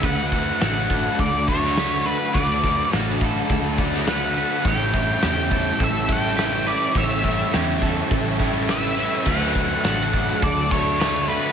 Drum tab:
CC |----------------|----------------|----------------|----------------|
HH |o---o---o---o---|o---o---o---o---|o---o---o---o---|o---o---o---o---|
SD |----o------oo---|----o------oo---|----o-------o---|----o-------o---|
BD |o-o---o-o-o-----|o-o---o-o-o-----|o-o---o-o-o-----|o-o---o-o-o-----|

CC |x---------------|
HH |----o---o---o---|
SD |----o-------o---|
BD |o-o---o-o-o-----|